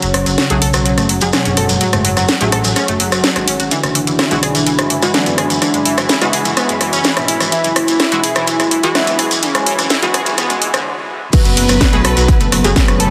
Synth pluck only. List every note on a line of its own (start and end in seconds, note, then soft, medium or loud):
0.02 0.12 F#3 medium
0.14 0.24 F#3 medium
0.26 0.35 F#3 medium
0.38 0.49 F#4 medium
0.50 0.56 F#4 medium
0.62 0.67 A4 loud
0.74 0.84 F#3 loud
0.85 0.91 F#3 loud
0.98 1.09 A3 medium
1.09 1.15 F#3 medium
1.22 1.27 F#3 loud
1.33 1.45 G#3 medium
1.46 1.55 C#4 medium
1.57 1.63 A4 loud
1.69 1.78 F#3 medium
1.81 1.87 F#3 loud
1.93 2.04 A3 medium
2.05 2.15 F#3 loud
2.17 2.22 F#3 loud
2.28 2.38 F#4 medium
2.41 2.50 C#4 medium
2.52 2.58 A4 loud
2.65 2.74 F#3 medium
2.76 2.88 C#4 medium
2.89 2.99 A3 medium
3.00 3.09 F#3 loud
3.12 3.21 F#3 loud
3.24 3.29 F#3 medium
3.36 3.47 G#3 medium
3.48 3.57 C#4 medium
3.60 3.69 F#4 medium
3.71 3.77 E3 loud
3.83 3.92 E3 medium
3.95 4.05 E3 medium
4.07 4.16 E3 medium
4.19 4.30 E4 medium
4.31 4.37 E4 medium
4.43 4.48 G#4 loud
4.55 4.65 E3 loud
4.67 4.72 E3 loud
4.79 4.90 G#3 medium
4.90 4.96 E3 medium
5.02 5.08 E3 loud
5.14 5.26 F#3 medium
5.26 5.35 B3 medium
5.38 5.44 G#4 loud
5.50 5.59 E3 medium
5.62 5.67 E3 loud
5.74 5.85 G#3 medium
5.86 5.96 E3 loud
5.98 6.03 E3 loud
6.09 6.19 E4 medium
6.22 6.31 B3 medium
6.33 6.39 G#4 loud
6.45 6.54 E3 medium
6.57 6.69 B3 medium
6.69 6.80 G#3 medium
6.81 6.92 E3 loud
6.93 7.04 C#4 loud
7.05 7.16 E3 medium
7.17 7.22 B2 medium
7.28 7.38 E4 medium
7.41 7.50 E3 medium
7.52 7.58 E3 loud
7.64 7.73 E3 medium
7.76 7.86 E3 medium
7.88 7.97 E3 medium
8.00 8.11 E4 medium
8.12 8.17 E4 medium
8.24 8.29 G#4 loud
8.36 8.46 E3 loud
8.47 8.53 E3 loud
8.60 8.71 G#3 medium
8.71 8.77 E3 medium
8.83 8.89 E3 loud
8.95 9.07 F#3 medium
9.07 9.16 B3 medium
9.19 9.25 G#4 loud
9.31 9.40 E3 medium
9.43 9.48 E3 loud
9.55 9.66 G#3 medium
9.67 9.78 E3 loud
9.79 9.84 E3 loud
9.90 10.00 E4 medium
10.03 10.12 B3 medium
10.14 10.20 G#4 loud
10.26 10.35 E3 medium
10.38 10.50 B3 loud
10.50 10.61 G#3 medium
10.62 10.73 E3 medium
10.74 10.83 D3 loud
11.33 11.39 F#3 loud
11.33 11.39 F#4 medium
11.45 11.54 F#3 medium
11.45 11.54 F#4 medium
11.57 11.66 F#3 medium
11.57 11.66 F#4 medium
11.69 11.78 F#3 medium
11.69 11.78 F#4 medium
11.81 11.92 F#4 medium
11.81 11.92 F#5 medium
11.93 11.98 F#4 medium
11.93 11.98 F#5 medium
12.05 12.10 A4 loud
12.05 12.10 A5 medium
12.17 12.27 F#3 loud
12.17 12.27 F#4 medium
12.28 12.34 F#3 loud
12.28 12.34 F#4 medium
12.41 12.52 A3 medium
12.41 12.52 A4 medium
12.52 12.58 F#3 medium
12.52 12.58 F#4 medium
12.64 12.70 F#3 loud
12.64 12.70 F#4 medium
12.76 12.88 G#3 medium
12.76 12.88 G#4 medium
12.88 12.97 C#4 medium
12.88 12.97 C#5 medium
13.00 13.06 A4 loud
13.00 13.06 A5 medium